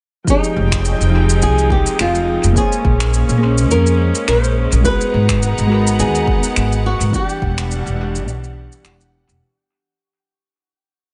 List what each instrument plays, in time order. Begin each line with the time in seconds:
0.24 synth keys F3 D#4, string section F3 G#3 C4 D#4 G5, kick, shaker
0.29 nylon-string guitar D#4, synth keys G4 G#4
0.44 shaker
0.56 upright bass F1
0.72 finger snap, kick, shaker
0.85 shaker
1.00 upright bass F1, shaker
1.10 synth keys F3 D#4
1.15 synth keys G4 G#4
1.30 shaker
1.42 upright bass C2, nylon-string guitar G#4, shaker
1.58 shaker
1.70 nylon-string guitar G4, kick
1.86 shaker
1.99 upright bass F1, nylon-string guitar F4, finger snap, shaker
2.15 shaker
2.44 upright bass F1, shaker
2.52 string section G#3 A#3 C#4, synth keys A#3 G#4, kick
2.57 nylon-string guitar G#4, synth keys C5 C#5, shaker
2.72 shaker
2.85 upright bass A#1, kick
3.00 finger snap, shaker
3.14 shaker
3.29 upright bass A#1, shaker
3.38 synth keys A#3 G#4
3.43 synth keys C#4 C5
3.58 shaker
3.71 upright bass F2, nylon-string guitar A#4, shaker
3.87 shaker
4.15 shaker
4.28 upright bass A#1, nylon-string guitar C5, finger snap, shaker
4.44 shaker
4.72 upright bass A#1, shaker
4.81 synth keys G#3 F#4, string section B3 D#4 F#5 A#5, kick
4.85 synth keys G#4 B4, nylon-string guitar B4, shaker
5.01 shaker
5.14 upright bass G#1
5.29 finger snap, kick, shaker
5.43 shaker
5.58 upright bass G#1, shaker
5.67 synth keys G#3 F#4
5.72 synth keys A#4 B4
5.87 shaker
5.99 upright bass D#2, nylon-string guitar G#4, shaker
6.15 shaker
6.27 kick
6.43 shaker
6.56 upright bass G#1, finger snap, shaker
6.72 shaker
6.86 nylon-string guitar F#4
7.00 upright bass G#1, shaker
7.10 synth keys E3 D4, string section E3 G3 B3 D4, kick, shaker
7.15 nylon-string guitar G4, synth keys G4 F#5
7.29 shaker
7.42 upright bass E1, kick
7.58 finger snap, shaker
7.71 shaker
7.86 upright bass E1, shaker
7.95 synth keys E3 D4
8.00 synth keys G4 F#5
8.15 shaker
8.28 upright bass B1, shaker
8.44 shaker
8.72 shaker
8.84 upright bass E1, finger snap, shaker
9.01 shaker
9.28 upright bass E1, shaker